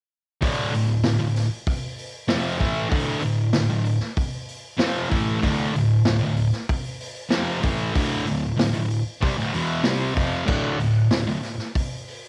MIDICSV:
0, 0, Header, 1, 3, 480
1, 0, Start_track
1, 0, Key_signature, -1, "minor"
1, 0, Tempo, 625652
1, 328, Time_signature, 4, 2, 24, 8
1, 4648, Tempo, 632911
1, 9371, End_track
2, 0, Start_track
2, 0, Title_t, "Distorted electric guitar"
2, 0, Program_c, 0, 30
2, 316, Note_on_c, 0, 38, 96
2, 317, Note_on_c, 0, 45, 104
2, 328, Note_on_c, 0, 50, 100
2, 543, Note_off_c, 0, 38, 0
2, 544, Note_off_c, 0, 45, 0
2, 552, Note_on_c, 0, 38, 57
2, 554, Note_on_c, 0, 45, 65
2, 560, Note_off_c, 0, 50, 0
2, 751, Note_off_c, 0, 38, 0
2, 752, Note_off_c, 0, 45, 0
2, 798, Note_on_c, 0, 38, 68
2, 800, Note_on_c, 0, 45, 79
2, 906, Note_off_c, 0, 38, 0
2, 909, Note_off_c, 0, 45, 0
2, 916, Note_on_c, 0, 38, 67
2, 918, Note_on_c, 0, 45, 80
2, 1113, Note_off_c, 0, 38, 0
2, 1114, Note_off_c, 0, 45, 0
2, 1749, Note_on_c, 0, 41, 95
2, 1751, Note_on_c, 0, 48, 104
2, 1761, Note_on_c, 0, 53, 109
2, 1974, Note_off_c, 0, 41, 0
2, 1978, Note_on_c, 0, 45, 86
2, 1980, Note_off_c, 0, 48, 0
2, 1983, Note_on_c, 0, 52, 96
2, 1987, Note_off_c, 0, 53, 0
2, 1990, Note_on_c, 0, 57, 99
2, 2212, Note_off_c, 0, 45, 0
2, 2215, Note_on_c, 0, 38, 97
2, 2221, Note_off_c, 0, 52, 0
2, 2221, Note_off_c, 0, 57, 0
2, 2224, Note_on_c, 0, 45, 96
2, 2224, Note_on_c, 0, 50, 100
2, 2445, Note_off_c, 0, 38, 0
2, 2454, Note_off_c, 0, 45, 0
2, 2454, Note_on_c, 0, 38, 57
2, 2463, Note_on_c, 0, 45, 73
2, 2468, Note_off_c, 0, 50, 0
2, 2662, Note_off_c, 0, 38, 0
2, 2666, Note_off_c, 0, 45, 0
2, 2709, Note_on_c, 0, 38, 76
2, 2710, Note_on_c, 0, 45, 81
2, 2825, Note_off_c, 0, 38, 0
2, 2825, Note_off_c, 0, 45, 0
2, 2834, Note_on_c, 0, 38, 63
2, 2834, Note_on_c, 0, 45, 73
2, 3032, Note_off_c, 0, 38, 0
2, 3032, Note_off_c, 0, 45, 0
2, 3661, Note_on_c, 0, 41, 104
2, 3667, Note_on_c, 0, 48, 101
2, 3675, Note_on_c, 0, 53, 112
2, 3905, Note_off_c, 0, 41, 0
2, 3908, Note_on_c, 0, 45, 96
2, 3910, Note_off_c, 0, 48, 0
2, 3913, Note_on_c, 0, 52, 97
2, 3914, Note_off_c, 0, 53, 0
2, 3917, Note_on_c, 0, 57, 100
2, 4142, Note_off_c, 0, 45, 0
2, 4145, Note_on_c, 0, 38, 106
2, 4153, Note_off_c, 0, 52, 0
2, 4156, Note_off_c, 0, 57, 0
2, 4156, Note_on_c, 0, 45, 100
2, 4160, Note_on_c, 0, 50, 117
2, 4391, Note_off_c, 0, 38, 0
2, 4396, Note_off_c, 0, 45, 0
2, 4398, Note_off_c, 0, 50, 0
2, 4402, Note_on_c, 0, 38, 69
2, 4406, Note_on_c, 0, 45, 60
2, 4598, Note_off_c, 0, 38, 0
2, 4601, Note_off_c, 0, 45, 0
2, 4648, Note_on_c, 0, 38, 70
2, 4651, Note_on_c, 0, 45, 71
2, 4754, Note_off_c, 0, 38, 0
2, 4756, Note_off_c, 0, 45, 0
2, 4763, Note_on_c, 0, 38, 71
2, 4765, Note_on_c, 0, 45, 78
2, 4957, Note_off_c, 0, 38, 0
2, 4958, Note_off_c, 0, 45, 0
2, 5588, Note_on_c, 0, 41, 106
2, 5597, Note_on_c, 0, 48, 106
2, 5598, Note_on_c, 0, 53, 98
2, 5826, Note_off_c, 0, 41, 0
2, 5830, Note_on_c, 0, 45, 90
2, 5833, Note_off_c, 0, 48, 0
2, 5833, Note_off_c, 0, 53, 0
2, 5841, Note_on_c, 0, 52, 97
2, 5843, Note_on_c, 0, 57, 105
2, 6069, Note_off_c, 0, 45, 0
2, 6073, Note_on_c, 0, 38, 91
2, 6075, Note_off_c, 0, 52, 0
2, 6076, Note_off_c, 0, 57, 0
2, 6079, Note_on_c, 0, 45, 105
2, 6088, Note_on_c, 0, 50, 106
2, 6301, Note_off_c, 0, 38, 0
2, 6309, Note_off_c, 0, 45, 0
2, 6310, Note_on_c, 0, 38, 68
2, 6318, Note_off_c, 0, 50, 0
2, 6318, Note_on_c, 0, 45, 75
2, 6508, Note_off_c, 0, 38, 0
2, 6512, Note_off_c, 0, 45, 0
2, 6550, Note_on_c, 0, 38, 68
2, 6550, Note_on_c, 0, 45, 79
2, 6666, Note_off_c, 0, 38, 0
2, 6666, Note_off_c, 0, 45, 0
2, 6675, Note_on_c, 0, 38, 61
2, 6675, Note_on_c, 0, 45, 74
2, 6870, Note_off_c, 0, 38, 0
2, 6870, Note_off_c, 0, 45, 0
2, 7039, Note_on_c, 0, 48, 95
2, 7053, Note_on_c, 0, 55, 104
2, 7154, Note_off_c, 0, 48, 0
2, 7160, Note_on_c, 0, 38, 88
2, 7161, Note_off_c, 0, 55, 0
2, 7167, Note_on_c, 0, 45, 103
2, 7274, Note_off_c, 0, 38, 0
2, 7278, Note_off_c, 0, 45, 0
2, 7286, Note_on_c, 0, 40, 82
2, 7297, Note_on_c, 0, 47, 92
2, 7301, Note_on_c, 0, 52, 94
2, 7510, Note_off_c, 0, 40, 0
2, 7513, Note_on_c, 0, 48, 92
2, 7514, Note_off_c, 0, 52, 0
2, 7515, Note_off_c, 0, 47, 0
2, 7517, Note_on_c, 0, 60, 97
2, 7518, Note_on_c, 0, 55, 91
2, 7738, Note_off_c, 0, 48, 0
2, 7744, Note_off_c, 0, 55, 0
2, 7744, Note_on_c, 0, 41, 84
2, 7747, Note_on_c, 0, 48, 93
2, 7751, Note_off_c, 0, 60, 0
2, 7754, Note_on_c, 0, 53, 103
2, 7980, Note_off_c, 0, 41, 0
2, 7983, Note_on_c, 0, 38, 91
2, 7984, Note_off_c, 0, 48, 0
2, 7986, Note_off_c, 0, 53, 0
2, 7987, Note_on_c, 0, 45, 102
2, 7989, Note_on_c, 0, 50, 99
2, 8226, Note_off_c, 0, 38, 0
2, 8227, Note_off_c, 0, 45, 0
2, 8230, Note_off_c, 0, 50, 0
2, 8236, Note_on_c, 0, 45, 73
2, 8238, Note_on_c, 0, 38, 74
2, 8432, Note_off_c, 0, 45, 0
2, 8433, Note_off_c, 0, 38, 0
2, 8486, Note_on_c, 0, 45, 79
2, 8489, Note_on_c, 0, 38, 69
2, 8588, Note_off_c, 0, 38, 0
2, 8592, Note_off_c, 0, 45, 0
2, 8598, Note_on_c, 0, 38, 61
2, 8601, Note_on_c, 0, 45, 74
2, 8794, Note_off_c, 0, 38, 0
2, 8796, Note_off_c, 0, 45, 0
2, 9371, End_track
3, 0, Start_track
3, 0, Title_t, "Drums"
3, 324, Note_on_c, 9, 36, 117
3, 324, Note_on_c, 9, 46, 93
3, 401, Note_off_c, 9, 36, 0
3, 401, Note_off_c, 9, 46, 0
3, 570, Note_on_c, 9, 46, 67
3, 646, Note_off_c, 9, 46, 0
3, 796, Note_on_c, 9, 38, 126
3, 799, Note_on_c, 9, 46, 88
3, 872, Note_off_c, 9, 38, 0
3, 875, Note_off_c, 9, 46, 0
3, 1040, Note_on_c, 9, 38, 31
3, 1043, Note_on_c, 9, 46, 63
3, 1117, Note_off_c, 9, 38, 0
3, 1120, Note_off_c, 9, 46, 0
3, 1281, Note_on_c, 9, 36, 124
3, 1287, Note_on_c, 9, 46, 97
3, 1358, Note_off_c, 9, 36, 0
3, 1364, Note_off_c, 9, 46, 0
3, 1524, Note_on_c, 9, 46, 66
3, 1601, Note_off_c, 9, 46, 0
3, 1753, Note_on_c, 9, 38, 116
3, 1756, Note_on_c, 9, 46, 99
3, 1830, Note_off_c, 9, 38, 0
3, 1833, Note_off_c, 9, 46, 0
3, 1998, Note_on_c, 9, 36, 106
3, 2001, Note_on_c, 9, 46, 71
3, 2075, Note_off_c, 9, 36, 0
3, 2078, Note_off_c, 9, 46, 0
3, 2237, Note_on_c, 9, 46, 101
3, 2238, Note_on_c, 9, 36, 118
3, 2314, Note_off_c, 9, 46, 0
3, 2315, Note_off_c, 9, 36, 0
3, 2473, Note_on_c, 9, 46, 63
3, 2550, Note_off_c, 9, 46, 0
3, 2708, Note_on_c, 9, 38, 119
3, 2711, Note_on_c, 9, 46, 90
3, 2785, Note_off_c, 9, 38, 0
3, 2788, Note_off_c, 9, 46, 0
3, 2954, Note_on_c, 9, 46, 51
3, 3031, Note_off_c, 9, 46, 0
3, 3066, Note_on_c, 9, 38, 32
3, 3143, Note_off_c, 9, 38, 0
3, 3194, Note_on_c, 9, 46, 77
3, 3199, Note_on_c, 9, 36, 120
3, 3271, Note_off_c, 9, 46, 0
3, 3276, Note_off_c, 9, 36, 0
3, 3440, Note_on_c, 9, 46, 62
3, 3517, Note_off_c, 9, 46, 0
3, 3676, Note_on_c, 9, 38, 122
3, 3679, Note_on_c, 9, 46, 84
3, 3753, Note_off_c, 9, 38, 0
3, 3756, Note_off_c, 9, 46, 0
3, 3921, Note_on_c, 9, 46, 62
3, 3925, Note_on_c, 9, 36, 112
3, 3998, Note_off_c, 9, 46, 0
3, 4002, Note_off_c, 9, 36, 0
3, 4167, Note_on_c, 9, 46, 92
3, 4168, Note_on_c, 9, 36, 109
3, 4244, Note_off_c, 9, 46, 0
3, 4245, Note_off_c, 9, 36, 0
3, 4415, Note_on_c, 9, 46, 58
3, 4491, Note_off_c, 9, 46, 0
3, 4643, Note_on_c, 9, 38, 123
3, 4646, Note_on_c, 9, 46, 90
3, 4719, Note_off_c, 9, 38, 0
3, 4722, Note_off_c, 9, 46, 0
3, 4880, Note_on_c, 9, 46, 54
3, 4956, Note_off_c, 9, 46, 0
3, 5002, Note_on_c, 9, 38, 33
3, 5078, Note_off_c, 9, 38, 0
3, 5130, Note_on_c, 9, 36, 121
3, 5130, Note_on_c, 9, 46, 91
3, 5206, Note_off_c, 9, 36, 0
3, 5206, Note_off_c, 9, 46, 0
3, 5367, Note_on_c, 9, 46, 72
3, 5443, Note_off_c, 9, 46, 0
3, 5594, Note_on_c, 9, 38, 115
3, 5597, Note_on_c, 9, 46, 89
3, 5669, Note_off_c, 9, 38, 0
3, 5673, Note_off_c, 9, 46, 0
3, 5838, Note_on_c, 9, 46, 68
3, 5845, Note_on_c, 9, 36, 114
3, 5914, Note_off_c, 9, 46, 0
3, 5921, Note_off_c, 9, 36, 0
3, 6084, Note_on_c, 9, 46, 97
3, 6087, Note_on_c, 9, 36, 120
3, 6160, Note_off_c, 9, 46, 0
3, 6163, Note_off_c, 9, 36, 0
3, 6324, Note_on_c, 9, 46, 67
3, 6400, Note_off_c, 9, 46, 0
3, 6571, Note_on_c, 9, 38, 127
3, 6574, Note_on_c, 9, 46, 91
3, 6647, Note_off_c, 9, 38, 0
3, 6650, Note_off_c, 9, 46, 0
3, 6806, Note_on_c, 9, 46, 60
3, 6882, Note_off_c, 9, 46, 0
3, 7049, Note_on_c, 9, 46, 88
3, 7050, Note_on_c, 9, 36, 115
3, 7125, Note_off_c, 9, 46, 0
3, 7126, Note_off_c, 9, 36, 0
3, 7287, Note_on_c, 9, 46, 63
3, 7363, Note_off_c, 9, 46, 0
3, 7513, Note_on_c, 9, 38, 118
3, 7516, Note_on_c, 9, 46, 86
3, 7589, Note_off_c, 9, 38, 0
3, 7592, Note_off_c, 9, 46, 0
3, 7760, Note_on_c, 9, 46, 59
3, 7766, Note_on_c, 9, 36, 109
3, 7836, Note_off_c, 9, 46, 0
3, 7842, Note_off_c, 9, 36, 0
3, 7999, Note_on_c, 9, 49, 108
3, 8005, Note_on_c, 9, 36, 127
3, 8075, Note_off_c, 9, 49, 0
3, 8081, Note_off_c, 9, 36, 0
3, 8241, Note_on_c, 9, 46, 61
3, 8317, Note_off_c, 9, 46, 0
3, 8478, Note_on_c, 9, 38, 119
3, 8481, Note_on_c, 9, 46, 81
3, 8553, Note_off_c, 9, 38, 0
3, 8556, Note_off_c, 9, 46, 0
3, 8717, Note_on_c, 9, 38, 31
3, 8720, Note_on_c, 9, 46, 55
3, 8793, Note_off_c, 9, 38, 0
3, 8796, Note_off_c, 9, 46, 0
3, 8840, Note_on_c, 9, 38, 34
3, 8916, Note_off_c, 9, 38, 0
3, 8966, Note_on_c, 9, 46, 87
3, 8967, Note_on_c, 9, 36, 107
3, 9042, Note_off_c, 9, 46, 0
3, 9043, Note_off_c, 9, 36, 0
3, 9213, Note_on_c, 9, 46, 72
3, 9289, Note_off_c, 9, 46, 0
3, 9371, End_track
0, 0, End_of_file